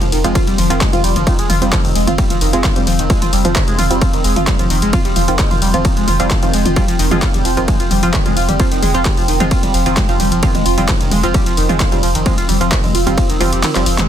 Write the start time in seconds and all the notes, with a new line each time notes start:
Already playing: F3 C4
0.01 F1 F3, closed hi-hat, mid tom
0.12 F1 D#3, open hi-hat
0.24 F1 F3 G#3 C4 F4, closed hi-hat
0.35 F4, kick, closed hi-hat, mid tom, ride
0.47 F1 G3, closed hi-hat
0.58 F1 F3, open hi-hat, mid tom
0.70 F1 D#3 F3 C4 F4, closed hi-hat
0.81 G#3, kick, clap, closed hi-hat, ride
0.93 F1 F3 C4 F4, closed hi-hat, mid tom
1.04 F1 G3, open hi-hat
1.16 F1 F3, closed hi-hat, mid tom
1.27 D#3 F3 C4 F4, kick, closed hi-hat, ride
1.39 F1 G#3, closed hi-hat
1.50 F1 F4, open hi-hat, mid tom
1.62 F1 F3 G3 C4 F4, closed hi-hat
1.72 F3, kick, clap, closed hi-hat, mid tom, ride
1.84 F1 D#3, open hi-hat
1.95 F1 G#3, open hi-hat
2.07 F1 F3 C4 F4, closed hi-hat, mid tom
2.18 G3, kick, closed hi-hat, ride
2.30 F1 F3, closed hi-hat, mid tom
2.41 F1 D#3, open hi-hat
2.53 F1 F3 G#3 C4 F4, closed hi-hat
2.64 F4, kick, clap, closed hi-hat, mid tom, ride
2.76 F1 F3 G3 C4 F4, closed hi-hat
2.87 F1 F3, open hi-hat, mid tom
2.99 F1 D#3, closed hi-hat
3.10 F3 G#3 C4 F4, kick, closed hi-hat, ride
3.22 F1 F4, closed hi-hat, mid tom
3.33 F1 G3, open hi-hat
3.45 F1 F3 C4 F4, closed hi-hat, mid tom
3.56 D#3, kick, clap, closed hi-hat, ride
3.68 F1 G#3, closed hi-hat
3.79 F1 F4, open hi-hat, mid tom
3.90 F1 F3 G3 C4 F4, closed hi-hat
4.01 F3, kick, closed hi-hat, mid tom, ride
4.13 F1 D#3, closed hi-hat
4.24 F1 G#3, open hi-hat
4.36 F1 F3 C4 F4, closed hi-hat, mid tom
4.47 G3, kick, clap, closed hi-hat, ride
4.59 F1 F3 C4 F4, closed hi-hat, mid tom
4.70 F1 D#3, open hi-hat
4.82 F1 G#3, closed hi-hat
4.93 F3 C4 F4, kick, closed hi-hat, mid tom, ride
5.05 F1 G3, closed hi-hat
5.16 F1 F3, open hi-hat, mid tom
5.28 F1 D#3 F3 C4 F4, closed hi-hat
5.39 G#3, kick, clap, closed hi-hat, ride
5.51 F1 F4, open hi-hat, mid tom
5.62 F1 G3, open hi-hat
5.74 F1 F3 C4 F4, closed hi-hat, mid tom
5.85 D#3, kick, closed hi-hat, ride
5.97 F1 G#3, closed hi-hat
6.08 F1 F4, open hi-hat, mid tom
6.20 F1 F3 G3 C4 F4, closed hi-hat
6.30 F3, kick, clap, closed hi-hat, mid tom, ride
6.42 F1 D#3 F3 C4 F4, closed hi-hat
6.53 F1 G#3, open hi-hat
6.65 F1 F4, closed hi-hat, mid tom
6.76 F3 G3 C4 F4, kick, closed hi-hat, mid tom, ride
6.88 F1 F3, closed hi-hat
6.99 F1 D#3, open hi-hat
7.11 F1 F3 G#3 C4 F4, closed hi-hat, mid tom
7.22 F4, kick, clap, closed hi-hat, ride
7.34 F1 G3, closed hi-hat, mid tom
7.45 F1 F3, open hi-hat
7.57 F1 D#3 F3 C4 F4, closed hi-hat
7.68 G#3, kick, closed hi-hat, mid tom, ride
7.80 F1 F4, closed hi-hat
7.91 F1 G3, open hi-hat, mid tom
8.03 F1 F3 C4 F4, closed hi-hat
8.14 D#3, kick, clap, closed hi-hat, ride
8.26 F1 F3 G#3 C4 F4, closed hi-hat, mid tom
8.37 F1 F4, open hi-hat
8.49 F1 G3, closed hi-hat, mid tom
8.59 F3 C4 F4, kick, closed hi-hat, ride
8.71 F1 D#3, closed hi-hat
8.82 F1 G#3, open hi-hat, mid tom
8.94 F1 F3 C4 F4, closed hi-hat
9.05 G3, kick, clap, closed hi-hat, mid tom, ride
9.17 F1 F3, open hi-hat
9.28 F1 D#3, open hi-hat
9.40 F1 F3 G#3 C4 F4, closed hi-hat, mid tom
9.51 F4, kick, closed hi-hat, ride
9.63 F1 G3, closed hi-hat, mid tom
9.74 F1 F3, open hi-hat
9.86 F1 D#3 F3 C4 F4, closed hi-hat
9.97 G#3, kick, clap, closed hi-hat, mid tom, ride
10.09 F1 F3 C4 F4, closed hi-hat
10.20 F1 G3, open hi-hat, mid tom
10.32 F1 F3, closed hi-hat
10.43 D#3 F3 C4 F4, kick, closed hi-hat, ride
10.55 F1 G#3, closed hi-hat, mid tom
10.66 F1 F4, open hi-hat
10.78 F1 F3 G3 C4 F4, closed hi-hat, mid tom
10.88 F3, kick, clap, closed hi-hat, ride
11.01 F1 D#3, closed hi-hat
11.11 F1 G#3, open hi-hat, mid tom
11.23 F1 F3 C4 F4, closed hi-hat
11.34 G3, kick, closed hi-hat, mid tom, ride
11.46 F1 F3, closed hi-hat
11.57 F1 D#3, open hi-hat
11.69 F1 F3 G#3 C4 F4, closed hi-hat, mid tom
11.80 F4, kick, clap, closed hi-hat, ride
11.92 F1 F3 G3 C4 F4, closed hi-hat, mid tom
12.03 F1 F3, open hi-hat
12.15 F1 D#3, closed hi-hat
12.26 F3 G#3 C4 F4, kick, closed hi-hat, mid tom, ride
12.38 F1 F4, closed hi-hat
12.49 F1 G3, open hi-hat, mid tom
12.61 F1 F3 C4 F4, closed hi-hat
12.72 D#3, kick, clap, closed hi-hat, ride
12.84 F1 G#3, open hi-hat, mid tom
12.94 F1 F4, open hi-hat
13.06 F1 F3 G3 C4 F4, closed hi-hat, mid tom
13.17 F3, kick, closed hi-hat, ride
13.29 F1 D#3, closed hi-hat
13.40 F1 F3 G3 C4 F4, open hi-hat, mid tom
13.52 F1 G3, closed hi-hat
13.63 D#3, clap, closed hi-hat, mid tom, ride
13.75 F1 F3 G3 C4 F4, clap, closed hi-hat
13.86 F1 F3, open hi-hat
13.98 F1 G#3, clap, closed hi-hat, mid tom